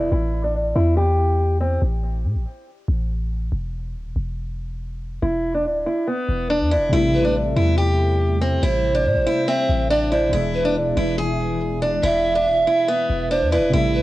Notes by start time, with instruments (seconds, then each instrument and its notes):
Already playing: 808-style bass E1, steel-string acoustic guitar E4
0.12 808-style bass A1, steel-string acoustic guitar E4
0.44 steel-string acoustic guitar D4
0.76 808-style bass E2, steel-string acoustic guitar E4
0.97 steel-string acoustic guitar G4
1.61 steel-string acoustic guitar C4
1.82 808-style bass A1
2.24 808-style bass A2
2.35 808-style bass A1
2.88 808-style bass A1
3.52 808-style bass E1
3.95 808-style bass D1
4.05 808-style bass E1
4.16 808-style bass E1
5.22 808-style bass E1, steel-string acoustic guitar E4
5.54 steel-string acoustic guitar D4
5.65 808-style bass D1
5.86 steel-string acoustic guitar E4
6.07 steel-string acoustic guitar B3
6.29 808-style bass E1
6.50 steel-string acoustic guitar D4
6.61 808-style bass E2
6.71 steel-string acoustic guitar E4
6.77 808-style bass E1
6.89 808-style bass A1, synth keys C3 G3, steel-string acoustic guitar E4
6.94 synth keys A3 E4
7.14 pan flute B4
7.25 steel-string acoustic guitar D4
7.56 808-style bass E2, steel-string acoustic guitar E4
7.78 steel-string acoustic guitar G4
8.41 steel-string acoustic guitar C4
8.63 808-style bass A1, steel-string acoustic guitar E4, pan flute C5
8.95 steel-string acoustic guitar D4
9.05 808-style bass A2
9.16 808-style bass A1
9.27 steel-string acoustic guitar E4
9.48 steel-string acoustic guitar C4, pan flute E5
9.69 808-style bass A1
9.90 steel-string acoustic guitar D4, pan flute D5
10.12 steel-string acoustic guitar E4, pan flute C5
10.29 synth keys B2 E3
10.33 808-style bass E1, synth keys G#3 E4, steel-string acoustic guitar E4
10.54 pan flute B4
10.65 steel-string acoustic guitar D4
10.76 808-style bass D1
10.86 808-style bass E1
10.97 808-style bass E1, steel-string acoustic guitar E4
11.18 steel-string acoustic guitar G#4
11.82 steel-string acoustic guitar D4
12.03 808-style bass E1, steel-string acoustic guitar E4, pan flute E5
12.35 steel-string acoustic guitar D4
12.46 808-style bass D1
12.67 steel-string acoustic guitar E4
12.88 steel-string acoustic guitar B3
13.10 808-style bass E1
13.31 steel-string acoustic guitar D4, pan flute C5
13.41 808-style bass E2
13.52 steel-string acoustic guitar E4, pan flute B4
13.57 808-style bass E1
13.70 808-style bass A1, synth keys C3 G3, steel-string acoustic guitar E4
13.75 synth keys A3 E4
13.95 pan flute B4